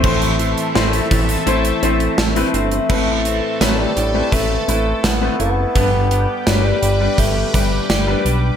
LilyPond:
<<
  \new Staff \with { instrumentName = "Analog synth pad" } { \time 4/4 \key a \minor \tempo 4 = 84 <a' e'' a''>1 | <a' a''>1 | <b' g'' d'''>1 | }
  \new Staff \with { instrumentName = "Clean electric guitar" } { \time 4/4 \key a \minor e8 e8 c'8 e8 e'8 c'8 e'8 c'8 | <c' b'>8 c'8 b'8 d'16 e'16 b'8 e'8 b'8 e'8 | <b g'>8 b8 g'8 d'8 g'8 d'8 g'8 d'8 | }
  \new Staff \with { instrumentName = "Grand piano" } { \time 4/4 \key a \minor <a c' e' c''>8. r16 <a c' e' c''>8. r16 <a c' e' c''>16 r16 <a c' e' c''>8 r16 <a c' e' b'>8 r16 | <a c' e' b'>8. r16 <a c' e' b'>8 r16 <a c' e' b'>8 r16 <a c' e' b'>8 r16 <a c' e' b'>8 r16 | <g b d' b'>8. r16 <g b d' b'>8 r16 <g b d' b'>8 r16 <g b d' b'>8 r16 <g b d' b'>8 r16 | }
  \new Staff \with { instrumentName = "Grand piano" } { \clef bass \time 4/4 \key a \minor a,4. r2 r8 | a,4. r2 r8 | g,4. r2 r8 | }
  \new Staff \with { instrumentName = "Bassoon" } { \clef bass \time 4/4 \key a \minor r2. r8 a8~ | a4 fis16 g8. a4 b8 b8~ | b4 fis16 g8. a8 r8 g8. r16 | }
  \new Staff \with { instrumentName = "Analog synth bass" } { \clef bass \time 4/4 \key a \minor a,,4 a,,8 a,,8 a,,8 a,,8 a,,8 g,,8 | a,,4 a,,8 a,,8 a,,8 a,,8 a,,8 fis,,8 | g,,4 g,,8 g,,8 g,,8 g,,8 g,,8 b,,8 | }
  \new DrumStaff \with { instrumentName = "Drums" } \drummode { \time 4/4 <cymc bd>16 hh16 hh16 hh16 sn16 hh16 <hh bd>16 hh16 hh16 hh16 hh16 hh16 sn16 hh16 hh16 hh16 | <cymc bd>8 hh8 <hh sn>8 hh8 <hh bd>8 hh8 <hh sn>8 hh8 | <hh bd>8 hh8 <hh sn>8 hh8 <hh bd>8 <hh bd>8 <hh sn>8 hh8 | }
>>